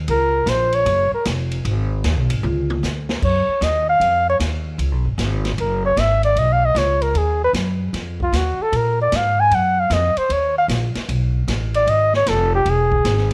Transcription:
0.08 C#2 A#4, ride
0.46 A#1 C5, snare, hi-hat pedal, ride
0.72 C#5, ride
0.86 F#1, ride
1.12 A#4, muted upright bass stroke
1.25 F1, snare, hi-hat pedal, ride
1.51 ride
1.65 G#1, ride
2.04 D#2, snare, hi-hat pedal, ride
2.16 B1
2.30 G#1, ride
2.43 C#2, high tom
2.70 high tom
2.83 D2, snare, hi-hat pedal
3.09 snare
3.22 F#2 C#5, kick, crash
3.48 muted upright bass stroke
3.61 D#2 D#5, snare, hi-hat pedal, ride
3.89 F5
4.00 F2, ride
4.29 C#5
4.40 D#2, snare, hi-hat pedal, ride
4.78 C#2, ride
4.91 B1
5.05 G#1
5.18 G#1, snare, hi-hat pedal, ride
5.45 snare, ride
5.58 F#1 A#4, ride
5.86 C#5
5.96 G#1 E5, snare, hi-hat pedal, ride
6.23 D5, ride
6.36 B1 D#5, ride
6.52 F5
6.65 D#5
6.75 C#2 C#5, snare, hi-hat pedal, ride
7.02 A#4, ride
7.14 D#2 G#4, ride
7.44 B4
7.53 F#2, snare, hi-hat pedal, ride
7.93 F2, snare, ride
8.20 F4, kick
8.32 D#2 F#4, snare, hi-hat pedal, ride
8.59 A4, muted upright bass stroke
8.72 A#2, ride
8.76 A#4
9.02 D5
9.12 G#2, snare, hi-hat pedal, ride
9.16 F5
9.40 G#5
9.51 F#2, ride
9.55 F#5
9.80 F5
9.90 F2 D#5, snare, hi-hat pedal, ride
10.16 C5, muted upright bass stroke, ride
10.29 D#2 C#5, ride
10.58 F5
10.68 A#1, snare, hi-hat pedal, ride
10.95 muted upright bass stroke, snare, ride
11.09 B1, ride
11.48 A1, snare, hi-hat pedal, ride
11.74 D5, ride
11.87 G#1 D#5, ride
12.13 C#5, snare
12.26 F1 A4, snare, hi-hat pedal, ride
12.55 G4
12.65 E1, ride
12.70 G#4
12.92 kick
13.05 G#1, snare, hi-hat pedal, ride
13.18 snare

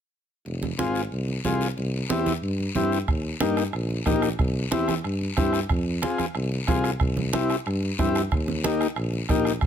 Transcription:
0.46 F1, high conga, long guiro
0.63 high conga
0.78 G#1 C4 F4 G#4, high conga, short guiro
0.95 short guiro
1.12 C2, long guiro
1.28 high conga
1.45 C2 C4 F4 G#4, high conga, short guiro
1.61 short guiro
1.77 C2, high conga, long guiro
2.09 E2 C4 E4 G4, high conga, short guiro
2.26 high conga, short guiro
2.42 G2, long guiro
2.59 high conga
2.75 G2 C4 E4 G4, high conga, short guiro
2.92 short guiro
3.08 D#2, bombo low, bombo rim, high conga, long guiro
3.40 G2 A#3 D#4 G4, bombo rim, high conga, short guiro
3.57 bombo rim, short guiro
3.73 A#1, bombo rim, long guiro
3.90 high conga
4.06 A#1 A#3 D#4 G4, bombo low, bombo rim, high conga, short guiro
4.22 bombo rim, short guiro
4.39 C2, bombo low, bombo rim, high conga, long guiro
4.71 E2 C4 E4 G4, bombo rim, high conga, short guiro
4.88 bombo rim, high conga, short guiro
5.04 G2, bombo rim, long guiro
5.21 high conga
5.37 G2 C4 E4 G4, bombo low, bombo rim, high conga, short guiro
5.53 bombo rim, short guiro
5.69 F2, bombo low, bombo rim, high conga, long guiro
6.02 C4 F4 G#4, bombo rim, high conga, short guiro
6.18 bombo rim, high conga, short guiro
6.35 C2, bombo rim, long guiro
6.52 high conga
6.67 C2 C4 F4 G#4, bombo low, bombo rim, high conga, short guiro
6.84 bombo rim, short guiro
7.00 C2, bombo low, bombo rim, high conga, long guiro
7.17 high conga
7.33 C4 E4 G4, bombo rim, high conga, short guiro
7.50 bombo rim, short guiro
7.66 G2, bombo rim, long guiro
7.82 high conga
7.99 G2 C4 E4 G4, bombo low, bombo rim, high conga, short guiro
8.15 bombo rim, short guiro
8.31 D#2, bombo low, bombo rim, high conga, long guiro
8.48 high conga
8.64 A#3 D#4 G4, bombo rim, high conga, short guiro
8.81 bombo rim, short guiro
8.96 A#1, bombo rim, long guiro
9.13 high conga
9.29 A#1 A#3 D#4 G4, bombo low, bombo rim, high conga, short guiro
9.45 bombo rim, short guiro
9.61 C2, bombo low, bombo rim, high conga, long guiro

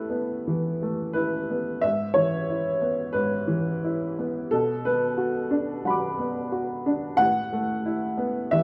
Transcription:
Already playing: A2 A3 B3 E4 A4 B4
0.10 B3
0.47 E3
0.82 A3
1.13 E4 B4
1.50 B3
1.81 G#2 E5
2.14 E3 C#5
2.49 E4
2.81 B3
3.13 G#2 B4
3.48 E3
3.84 E4
4.18 B3
4.51 B2 A4
4.85 B3 B4
5.17 F#4
5.51 D4
5.85 F#3 F#5 B5
5.90 D6
6.18 B3
6.52 F#4
6.86 D4
7.17 A2 F#5
7.53 A3
7.86 E4
8.17 B3
8.51 E3 E5

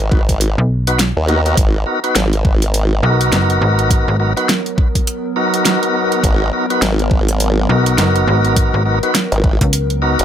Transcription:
Already playing: G#1
0.12 kick
0.29 kick, closed hi-hat
0.41 closed hi-hat
0.58 B1
0.87 B3 D#4 F#4 B4, closed hi-hat
0.99 snare, closed hi-hat
1.17 D#2
1.28 B3 D#4 F#4 A#4, closed hi-hat
1.46 B3 D#4 F#4 A#4, closed hi-hat
1.57 G#1 F#3 B3 A#4, kick, closed hi-hat
1.86 B3 D#4 F#4 A#4
2.04 B3 D#4 F#4 B4, closed hi-hat
2.15 G#1, snare, closed hi-hat
2.33 closed hi-hat
2.45 kick
2.62 closed hi-hat
2.74 closed hi-hat
3.03 B1 B3 D#4 F#4 A#4
3.21 closed hi-hat
3.32 F#1, snare, closed hi-hat
3.50 closed hi-hat
3.61 G#1
3.79 closed hi-hat
3.91 kick, closed hi-hat
4.08 G#1
4.20 B3 D#4 F#4 A#4
4.37 B3 D#4 F#4 B4, closed hi-hat
4.49 snare, closed hi-hat
4.66 closed hi-hat
4.78 kick
4.95 kick, closed hi-hat
5.07 closed hi-hat
5.36 B3 D#4 F#4 A#4
5.54 closed hi-hat
5.65 snare, closed hi-hat
5.83 closed hi-hat
6.12 closed hi-hat
6.24 G#1, kick, closed hi-hat
6.53 B3 D#4 F#4 A#4
6.70 B3 D#4 F#4 B4, closed hi-hat
6.82 G#1, snare, closed hi-hat
6.99 closed hi-hat
7.11 kick
7.29 closed hi-hat
7.40 closed hi-hat
7.69 B1 B3 D#4 F#4 A#4
7.86 closed hi-hat
7.98 F#1, snare, closed hi-hat
8.16 closed hi-hat
8.27 G#1
8.45 closed hi-hat
8.56 kick, closed hi-hat
8.74 G#1
8.86 B3 D#4 F#4 A#4
9.03 B3 D#4 F#4 B4, closed hi-hat
9.15 snare, closed hi-hat
9.32 G#1, closed hi-hat
9.44 kick
9.61 C#2, kick, closed hi-hat
9.73 closed hi-hat
9.90 closed hi-hat
10.02 B3 D#4 F#4 A#4
10.19 F#1, closed hi-hat

